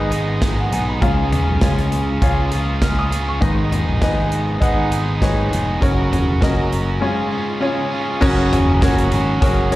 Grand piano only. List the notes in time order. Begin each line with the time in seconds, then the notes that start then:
Already playing: G#2 D#3 D#4 G#4 B4 D#5
0.60 F#5
0.73 G#5
0.89 B5
1.02 G#2 F4 G#4 C#5 F5
1.62 F4 G#4 C#5 G#5
2.22 F4 G#4 C#5 F5
2.82 F6
2.99 D#6
3.29 C#6
3.41 G#2 D#3 D#4 G#4 B4 D#5
4.02 D#4 G#4 B4 D#5
4.61 D#4 G#4 B4 F#5
5.21 D#4 G#4 B4 C#5
5.81 C#3 C#4 F#4 A#4 C#5
6.41 C#4 F#4 A#4 D#5
7.00 G#2 C#4 F4 G#4 C#5
7.61 C#4 F4 G#4 C#5
8.21 C#3 C#4 F#4 G#4 A#4 C#5
8.81 C#4 F#4 G#4 A#4 C#5
9.41 C#4 F#4 G#4 A#4 C#5
9.71 C#4 F#4 G#4 A#4 C#5